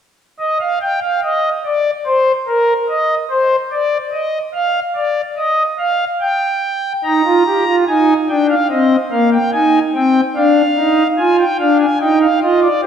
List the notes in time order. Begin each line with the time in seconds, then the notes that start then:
0.40 D#5
0.61 F5
0.82 G5
1.02 F5
1.24 D#5
1.65 D5
2.07 C5
2.48 A#4
2.90 D#5
3.31 C5
3.72 D5
4.13 D#5
4.54 F5
4.96 D5
5.37 D#5
5.79 F5
6.21 G5
7.04 D#4 A#5
7.26 F4
7.47 G4
7.67 F4
7.88 D#4 G#5
8.29 D4 G5
8.50 F5
8.71 C4 D#5
9.12 A#3 F5
9.33 G5
9.54 D#4 G#5
9.95 C4 G5
10.36 D4 F5
10.77 D#4
11.19 F4 G#5
11.39 G5
11.60 D4 F5
11.80 G#5
12.01 D#4 G5
12.22 F5
12.42 F4 D#5
12.63 D5
12.84 G4